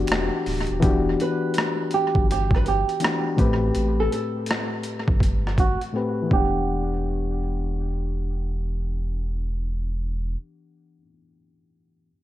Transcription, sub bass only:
0.10 0.30 E1 medium
0.47 0.67 D1 medium
0.70 0.82 D#1 medium
0.83 1.16 E1 loud
2.15 2.84 G1 medium
3.39 3.71 A1 medium
3.76 4.09 A1 medium
5.08 5.77 G1 medium
6.31 10.36 E1 medium

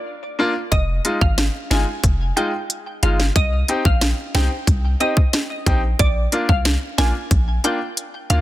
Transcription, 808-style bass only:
0.72 1.00 F1 loud
1.21 1.49 G#1 loud
1.71 1.85 G1 loud
2.04 2.32 F1 loud
3.03 3.31 G1 loud
3.36 3.64 C2 loud
3.85 4.13 A#1 loud
4.35 4.49 C2 loud
4.67 4.96 C2 loud
5.66 5.94 A#1 loud
6.00 6.28 A#1 loud
6.49 6.77 C2 loud
6.98 7.12 A#1 medium
7.31 7.59 A#1 loud
8.30 8.41 D2 loud

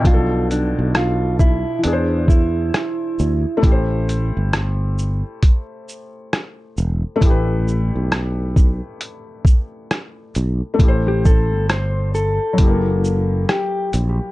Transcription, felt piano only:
0.00 1.78 B2 medium
0.00 1.80 F3 medium
0.00 0.31 G5 medium
0.09 1.81 D4 medium
0.14 1.85 A4 medium
1.78 3.57 E3 medium
1.83 3.59 D4 medium
1.87 3.61 G#4 medium
1.93 3.64 C5 medium
3.57 7.14 A3 medium
3.61 7.16 E4 medium
3.66 7.19 G4 medium
3.72 7.22 C5 medium
7.16 10.72 A3 medium
7.20 10.75 E4 medium
7.25 10.78 G4 medium
7.30 10.80 B4 medium
10.74 12.52 A3 medium
10.79 12.55 E4 medium
10.83 12.57 G4 medium
10.88 12.59 C5 medium
12.53 14.31 F#3 medium
12.58 14.32 E4 medium
12.63 14.32 G4 medium
12.67 14.32 A#3 medium

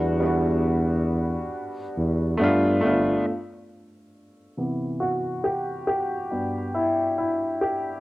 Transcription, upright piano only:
0.00 0.17 G3 medium
0.00 0.18 B3 medium
0.00 0.19 D4 medium
0.00 0.20 F#4 medium
0.20 1.81 G3 medium
0.20 1.82 B3 medium
0.20 1.83 D4 medium
0.26 1.84 F#4 medium
2.37 2.78 A3 medium
2.37 2.79 B3 medium
2.42 2.81 D4 medium
2.42 2.82 F4 loud
2.81 3.22 A3 medium
2.81 3.23 B3 medium
2.85 3.24 D4 medium
2.85 3.25 F4 medium
4.57 5.20 C3 soft
4.57 5.20 E3 soft
4.57 5.21 B3 soft
5.00 5.45 F#4 medium
5.44 5.86 G4 medium
5.87 6.77 G4 loud
6.31 8.00 G2 soft
6.31 8.00 B3 medium
6.31 8.00 F#4 soft
6.74 7.17 E4 medium
7.18 7.28 E4 medium
7.61 8.00 G4 medium

